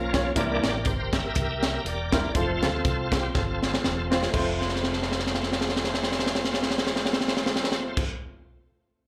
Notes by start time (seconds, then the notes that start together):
Already playing: B1 F3 A#3 C#4 F4 A#4
0.13 C#4 F4 C#5, kick, snare, closed hi-hat
0.35 C2 C3 E3 G3 A#3 C4 D4 E4 G4 A#4 D5, kick, closed hi-hat
0.63 A1, snare, closed hi-hat
0.85 G1 C5, kick, closed hi-hat
1.13 G4 A#4 E5, kick, snare, closed hi-hat
1.35 C2, kick, closed hi-hat
1.63 snare, closed hi-hat
1.84 E1 G4 A#4 D5, closed hi-hat
2.12 G3 A#3 C4 E4 A#4, kick, snare, closed hi-hat
2.35 F1 F3 A3 C4 F4 A4 C5, kick, closed hi-hat
2.62 D2 C4 F4 A4, snare, closed hi-hat
2.85 C2, kick, closed hi-hat
3.12 G4, kick, snare, closed hi-hat
3.35 G1 C4 F4 A4, kick, snare
3.63 snare
3.74 snare
3.84 E1, snare
4.11 C4 F4 C5, snare
4.23 snare
4.30 F1 F2 A3 C4, kick, crash
4.34 A3 C4 F4 C5
4.61 snare
4.69 snare
4.76 snare
4.84 snare
4.93 snare
5.02 snare
5.12 snare
5.19 snare
5.27 snare
5.34 snare
5.43 snare
5.53 snare
5.61 snare
5.69 snare
5.76 snare
5.84 snare
5.94 snare
6.04 snare
6.12 snare
6.19 snare
6.26 snare
6.35 snare
6.45 snare
6.54 snare
6.63 snare
6.71 snare
6.78 snare
6.87 snare
6.96 snare
7.06 snare
7.13 snare
7.21 snare
7.28 snare
7.37 snare
7.46 snare
7.56 snare
7.64 snare
7.72 snare
7.97 kick, crash